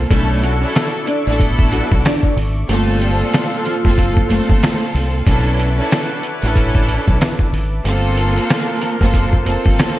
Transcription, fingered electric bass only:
0.11 B1
1.27 A1
1.92 B1
2.36 G#1
2.69 G1
3.85 F#1
4.49 G1
4.94 C2
5.27 B1
6.43 A1
7.08 B1
7.52 G#1
7.85 G1
9.01 F#1
9.66 G1

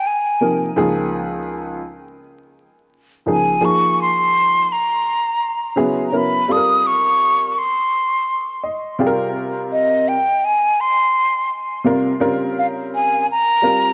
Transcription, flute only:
0.07 G#5
3.31 G#5
3.65 C#6
4.02 C6
4.72 A#5
6.08 A#5
6.17 B5
6.52 D#6
6.87 C#6
7.52 C#6
7.58 C6
9.72 D#5
10.08 G5
10.45 G#5
10.81 C6
12.59 F5
12.95 G#5
13.32 A#5

